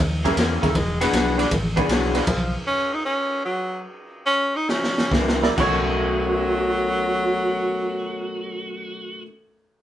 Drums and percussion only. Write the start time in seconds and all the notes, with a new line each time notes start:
0.01 snare
0.25 kick, snare, ride
0.37 snare, ride
0.63 kick, snare, ride
0.75 kick, snare, ride
1.01 snare, ride
1.13 snare, ride
1.39 snare, ride
1.51 kick, snare, ride
1.77 kick, snare, ride
1.89 snare, ride
2.15 snare, ride
2.27 kick, snare, crash, ride
4.69 snare
4.84 snare
4.98 snare
5.12 kick, snare
5.28 snare
5.43 snare
5.58 kick, crash